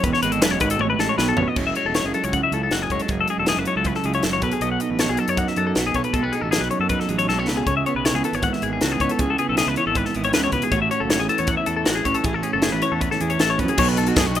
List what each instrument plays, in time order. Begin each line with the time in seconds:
0.03 fingered electric bass E1, clean electric guitar E2 B4, kick, closed hi-hat
0.13 clean electric guitar C#5, snare
0.23 fingered electric bass G#1, clean electric guitar G#3 B4, closed hi-hat
0.32 clean electric guitar A4, closed hi-hat
0.41 fingered electric bass E1, clean electric guitar F#2 B4, snare, closed hi-hat
0.51 clean electric guitar C#5
0.60 fingered electric bass G#1, clean electric guitar G#2 B4, kick, closed hi-hat
0.70 clean electric guitar A4, closed hi-hat
0.79 fingered electric bass A1, clean electric guitar A2 C#5, high tom
0.90 clean electric guitar B4
0.98 fingered electric bass A1, clean electric guitar G#3 A4, snare
1.09 clean electric guitar C#5
1.18 fingered electric bass B1, clean electric guitar B2 B4, snare
1.29 clean electric guitar A4
1.37 fingered electric bass A1, clean electric guitar B3 C#5, floor tom
1.48 clean electric guitar D#5
1.56 fingered electric bass F#1, clean electric guitar F#2 F#3 G#3 E4 C#5, kick, crash
1.67 clean electric guitar E5
1.75 clean electric guitar G#3 C#5, closed hi-hat
1.85 fingered electric bass E1, clean electric guitar A4
1.94 clean electric guitar E4 C#5, snare, closed hi-hat
2.04 fingered electric bass F#1, clean electric guitar G#4
2.14 clean electric guitar F#3 A4, closed hi-hat
2.24 fingered electric bass C#2, clean electric guitar C#5, closed hi-hat
2.33 clean electric guitar C#3 F#5, kick, closed hi-hat
2.43 clean electric guitar E5
2.52 fingered electric bass C#2, clean electric guitar E4 A4, closed hi-hat
2.63 clean electric guitar A4
2.71 fingered electric bass F#1, clean electric guitar F#3 F#4, snare, closed hi-hat
2.82 clean electric guitar G#4
2.90 fingered electric bass F#1, clean electric guitar G#3 C#5, kick, closed hi-hat
3.00 clean electric guitar A4, closed hi-hat
3.08 fingered electric bass F#1, clean electric guitar F#2 G#4, kick, closed hi-hat
3.21 clean electric guitar A4
3.28 clean electric guitar G#3 G#4, closed hi-hat
3.38 fingered electric bass E1, clean electric guitar A4
3.46 clean electric guitar E4 G#4, snare, closed hi-hat
3.57 fingered electric bass F#1, clean electric guitar B4
3.65 clean electric guitar F#3 C#5, closed hi-hat
3.76 fingered electric bass C#2, clean electric guitar A4
3.85 clean electric guitar C#3 B4, kick, closed hi-hat
3.95 clean electric guitar A4, snare
4.04 fingered electric bass C#2, clean electric guitar E4 G#4, closed hi-hat
4.14 clean electric guitar C#5, closed hi-hat
4.23 fingered electric bass F#1, clean electric guitar F#3 A4, snare, closed hi-hat
4.33 clean electric guitar C#5
4.42 fingered electric bass B1, clean electric guitar B2 A4 B4, kick, closed hi-hat
4.52 clean electric guitar G#4, closed hi-hat
4.61 fingered electric bass B1, clean electric guitar B3 D#5, closed hi-hat
4.72 clean electric guitar F#5
4.80 clean electric guitar D#4 D#5, closed hi-hat
4.90 fingered electric bass A1, clean electric guitar B4
4.99 clean electric guitar F#3 C#5, snare, closed hi-hat
5.09 fingered electric bass B1, clean electric guitar G#4
5.17 clean electric guitar F#2 A4, closed hi-hat
5.28 fingered electric bass F#2, clean electric guitar C#5, closed hi-hat
5.37 clean electric guitar D#4 F#5, kick, closed hi-hat
5.47 clean electric guitar E5, snare
5.56 fingered electric bass F#2, clean electric guitar F#3 A4, closed hi-hat
5.67 clean electric guitar A4
5.75 fingered electric bass B1, clean electric guitar B3 F#4, snare, closed hi-hat
5.87 clean electric guitar G#4
5.94 fingered electric bass B1, clean electric guitar B2 A4 C#5, kick, closed hi-hat
6.04 clean electric guitar B4, closed hi-hat
6.13 fingered electric bass B1, clean electric guitar G#3 A4, kick, closed hi-hat
6.23 clean electric guitar B3 B4
6.32 clean electric guitar D#4 G#4, closed hi-hat
6.41 fingered electric bass A1, clean electric guitar A4
6.51 clean electric guitar F#3 G#4, snare, closed hi-hat
6.61 fingered electric bass B1, clean electric guitar B4
6.71 clean electric guitar F#2 C#5, closed hi-hat
6.79 fingered electric bass F#2, clean electric guitar A4
6.89 clean electric guitar D#4 B4, kick, closed hi-hat
7.00 clean electric guitar A4, snare
7.09 fingered electric bass A1, clean electric guitar F#3 G#4, closed hi-hat
7.19 clean electric guitar C#5, closed hi-hat
7.28 fingered electric bass B1, clean electric guitar G#3 A4, snare
7.39 clean electric guitar B3 C#5
7.47 fingered electric bass C#2, clean electric guitar B2 A4 B4, snare
7.57 clean electric guitar G#4
7.66 fingered electric bass C#2, clean electric guitar C#3 G#4 C#5, kick, closed hi-hat
7.77 clean electric guitar E5
7.86 clean electric guitar B3 C#5, closed hi-hat
7.95 fingered electric bass B1, clean electric guitar B4
8.05 clean electric guitar E4 C#5, snare, closed hi-hat
8.14 fingered electric bass C#2, clean electric guitar G#4
8.24 clean electric guitar E3 A4, closed hi-hat
8.33 fingered electric bass G#1, clean electric guitar C#5, closed hi-hat
8.43 clean electric guitar G#2 F#5, kick, closed hi-hat
8.53 clean electric guitar E5, snare
8.62 fingered electric bass G#1, clean electric guitar E4 G#4, closed hi-hat
8.73 clean electric guitar G#4
8.81 fingered electric bass C#2, clean electric guitar E3 F#4, snare, closed hi-hat
8.92 clean electric guitar G#4
9.00 fingered electric bass C#2, clean electric guitar B3 C#5, kick, closed hi-hat
9.09 clean electric guitar A4, closed hi-hat
9.19 fingered electric bass C#2, clean electric guitar C#3 G#4, kick, closed hi-hat
9.30 clean electric guitar A4
9.38 clean electric guitar B3 G#4, closed hi-hat
9.49 fingered electric bass B1, clean electric guitar A4
9.57 clean electric guitar E4 G#4, snare, closed hi-hat
9.67 fingered electric bass C#2, clean electric guitar B4
9.76 clean electric guitar E3 C#5, closed hi-hat
9.86 fingered electric bass G#1, clean electric guitar A4
9.95 clean electric guitar G#2 B4, kick, closed hi-hat
10.05 clean electric guitar A4, snare
10.14 fingered electric bass G#1, clean electric guitar E4 G#4, closed hi-hat
10.24 clean electric guitar C#5, closed hi-hat
10.33 fingered electric bass C#2, clean electric guitar C#3 B4, snare, closed hi-hat
10.44 clean electric guitar C#5
10.52 fingered electric bass C#2, clean electric guitar B2 B4, kick, closed hi-hat
10.62 clean electric guitar G#4, closed hi-hat
10.71 fingered electric bass A1, clean electric guitar A2 F#4 C#5, kick, closed hi-hat
10.82 clean electric guitar E5
10.91 clean electric guitar C#4 C#5, closed hi-hat
11.00 fingered electric bass F#1, clean electric guitar A4
11.10 clean electric guitar E4 C#5, snare, closed hi-hat
11.20 fingered electric bass A1, clean electric guitar G#4
11.29 clean electric guitar E3 A4, closed hi-hat
11.38 fingered electric bass E2, clean electric guitar C#5, closed hi-hat
11.47 clean electric guitar E3 F#5, kick, closed hi-hat
11.57 clean electric guitar E5
11.66 fingered electric bass E2, clean electric guitar E4 A4, closed hi-hat
11.77 clean electric guitar A4
11.86 fingered electric bass A1, clean electric guitar E3 F#4, snare, closed hi-hat
11.95 clean electric guitar G#4
12.05 fingered electric bass A1, clean electric guitar C#4 C#5, kick, closed hi-hat
12.14 clean electric guitar A4, closed hi-hat
12.23 fingered electric bass A1, clean electric guitar A2 E4 G#4, kick, closed hi-hat
12.33 clean electric guitar F#4 A4
12.43 clean electric guitar C#4 G#4, closed hi-hat
12.53 fingered electric bass F#1, clean electric guitar A4
12.62 clean electric guitar E4 G#4, snare, closed hi-hat
12.72 fingered electric bass A1, clean electric guitar B4
12.82 clean electric guitar E3 C#5, closed hi-hat
12.92 fingered electric bass E2, clean electric guitar A4
13.01 clean electric guitar E3 B4, kick, closed hi-hat
13.11 clean electric guitar A4, snare
13.21 fingered electric bass E2, clean electric guitar E4 G#4, closed hi-hat
13.30 clean electric guitar C#5, closed hi-hat
13.39 fingered electric bass A1, clean electric guitar E3 A4, snare, closed hi-hat
13.50 clean electric guitar C#5
13.58 fingered electric bass F#2, clean electric guitar C#4 B4, kick, closed hi-hat
13.68 clean electric guitar G#4, closed hi-hat
13.76 fingered electric bass B1, clean electric guitar B2 F#3 B3 D#4 A4 C#5, kick, crash
13.88 clean electric guitar B4, snare
13.96 clean electric guitar D#4 A4, closed hi-hat
14.07 clean electric guitar F#4, closed hi-hat
14.16 fingered electric bass F#2, clean electric guitar G#3 G#4, kick, snare, closed hi-hat
14.26 fingered electric bass B1, clean electric guitar B3 F#4
14.35 clean electric guitar F#3 D#5, closed hi-hat